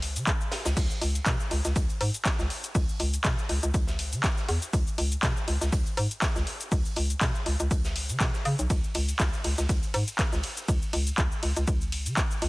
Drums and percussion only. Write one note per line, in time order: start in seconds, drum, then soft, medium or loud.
0.02 closed hi-hat medium
0.02 open hi-hat loud
0.16 closed hi-hat medium
0.16 closed hi-hat soft
0.16 shaker medium
0.27 kick loud
0.27 clap loud
0.27 closed hi-hat medium
0.27 shaker medium
0.41 shaker soft
0.52 snare loud
0.52 closed hi-hat medium
0.52 open hi-hat medium
0.65 snare loud
0.65 closed hi-hat medium
0.65 shaker medium
0.77 kick loud
0.77 closed hi-hat medium
0.77 closed hi-hat loud
0.77 crash medium
0.77 shaker medium
0.91 shaker soft
1.02 closed hi-hat medium
1.02 open hi-hat loud
1.15 closed hi-hat medium
1.15 shaker medium
1.26 kick loud
1.26 snare loud
1.26 clap loud
1.26 closed hi-hat medium
1.26 shaker medium
1.40 shaker soft
1.51 closed hi-hat medium
1.51 open hi-hat loud
1.65 snare soft
1.65 closed hi-hat medium
1.65 shaker medium
1.76 kick loud
1.76 closed hi-hat medium
1.76 shaker medium
1.90 closed hi-hat soft
1.90 shaker soft
2.01 closed hi-hat medium
2.01 open hi-hat loud
2.14 closed hi-hat medium
2.14 shaker medium
2.25 kick loud
2.25 snare loud
2.25 clap loud
2.25 closed hi-hat medium
2.25 shaker medium
2.39 snare soft
2.39 shaker soft
2.50 closed hi-hat medium
2.50 open hi-hat medium
2.64 closed hi-hat medium
2.64 shaker medium
2.75 kick loud
2.75 closed hi-hat medium
2.75 open hi-hat medium
2.75 shaker medium
2.89 shaker soft
2.99 closed hi-hat medium
2.99 open hi-hat loud
3.14 closed hi-hat medium
3.14 shaker medium
3.24 kick loud
3.24 snare loud
3.24 clap loud
3.24 closed hi-hat loud
3.24 closed hi-hat medium
3.24 shaker medium
3.38 shaker soft
3.49 closed hi-hat medium
3.49 open hi-hat loud
3.63 closed hi-hat medium
3.63 shaker medium
3.74 kick loud
3.74 closed hi-hat medium
3.74 shaker medium
3.87 snare medium
3.87 shaker soft
3.99 closed hi-hat medium
3.99 open hi-hat loud
4.12 closed hi-hat soft
4.12 closed hi-hat medium
4.12 shaker medium
4.24 kick loud
4.24 snare loud
4.24 clap loud
4.24 closed hi-hat medium
4.24 shaker medium
4.37 snare soft
4.37 shaker soft
4.49 closed hi-hat medium
4.49 open hi-hat loud
4.62 closed hi-hat medium
4.62 shaker medium
4.73 kick loud
4.73 closed hi-hat medium
4.73 shaker medium
4.87 shaker soft
4.98 closed hi-hat medium
4.98 open hi-hat loud
5.12 closed hi-hat medium
5.12 shaker medium
5.23 kick loud
5.23 snare loud
5.23 clap loud
5.23 closed hi-hat medium
5.23 shaker medium
5.37 shaker soft
5.48 closed hi-hat medium
5.48 open hi-hat loud
5.61 snare medium
5.61 closed hi-hat medium
5.61 shaker medium
5.72 kick loud
5.72 closed hi-hat loud
5.72 closed hi-hat medium
5.72 shaker medium
5.86 closed hi-hat soft
5.86 shaker soft
5.97 closed hi-hat medium
5.97 open hi-hat loud
6.11 closed hi-hat medium
6.11 shaker medium
6.22 kick loud
6.22 snare loud
6.22 clap loud
6.22 closed hi-hat loud
6.22 closed hi-hat medium
6.22 shaker medium
6.36 snare soft
6.36 shaker soft
6.47 closed hi-hat medium
6.47 open hi-hat medium
6.61 closed hi-hat medium
6.61 shaker medium
6.72 kick loud
6.72 closed hi-hat medium
6.72 open hi-hat medium
6.72 shaker medium
6.85 shaker soft
6.96 closed hi-hat medium
6.96 open hi-hat loud
7.10 closed hi-hat medium
7.10 shaker medium
7.21 kick loud
7.21 snare loud
7.21 clap loud
7.21 closed hi-hat medium
7.21 shaker medium
7.35 shaker soft
7.46 closed hi-hat medium
7.46 open hi-hat loud
7.60 closed hi-hat medium
7.60 shaker medium
7.71 kick loud
7.71 closed hi-hat medium
7.71 shaker medium
7.85 snare medium
7.85 shaker soft
7.96 closed hi-hat medium
7.96 open hi-hat loud
8.09 closed hi-hat medium
8.09 closed hi-hat soft
8.09 shaker medium
8.20 kick loud
8.20 snare loud
8.20 clap loud
8.20 closed hi-hat medium
8.20 shaker medium
8.34 snare soft
8.34 shaker soft
8.45 closed hi-hat medium
8.45 open hi-hat loud
8.59 closed hi-hat medium
8.59 shaker medium
8.70 kick loud
8.70 closed hi-hat medium
8.70 ride medium
8.70 shaker medium
8.84 shaker soft
8.94 closed hi-hat medium
8.94 open hi-hat loud
8.94 ride medium
9.09 closed hi-hat medium
9.09 shaker medium
9.20 kick loud
9.20 snare loud
9.20 clap loud
9.20 closed hi-hat medium
9.20 ride medium
9.20 shaker medium
9.33 shaker soft
9.44 closed hi-hat medium
9.44 open hi-hat loud
9.44 ride medium
9.58 snare medium
9.58 closed hi-hat medium
9.58 shaker medium
9.69 kick loud
9.69 closed hi-hat medium
9.69 closed hi-hat loud
9.69 ride medium
9.69 shaker medium
9.83 closed hi-hat soft
9.83 shaker soft
9.94 closed hi-hat medium
9.94 open hi-hat loud
9.94 ride medium
10.08 closed hi-hat medium
10.08 shaker medium
10.19 kick loud
10.19 snare loud
10.19 clap loud
10.19 closed hi-hat medium
10.19 ride medium
10.19 shaker medium
10.32 snare soft
10.32 shaker soft
10.43 closed hi-hat medium
10.43 open hi-hat medium
10.43 ride medium
10.57 closed hi-hat medium
10.57 shaker medium
10.68 kick loud
10.68 closed hi-hat medium
10.68 ride medium
10.68 shaker medium
10.82 shaker soft
10.93 open hi-hat loud
10.93 ride medium
11.07 closed hi-hat medium
11.07 shaker medium
11.18 kick loud
11.18 clap loud
11.18 closed hi-hat medium
11.18 ride medium
11.18 shaker medium
11.32 shaker soft
11.43 open hi-hat medium
11.43 ride medium
11.56 closed hi-hat medium
11.56 shaker medium
11.67 kick loud
11.67 closed hi-hat medium
11.67 ride medium
11.67 shaker medium
11.81 shaker soft
11.92 open hi-hat loud
11.92 ride medium
12.06 closed hi-hat medium
12.06 shaker medium
12.17 kick loud
12.17 clap loud
12.17 closed hi-hat medium
12.17 ride medium
12.17 shaker medium
12.31 shaker soft
12.42 open hi-hat medium
12.42 ride medium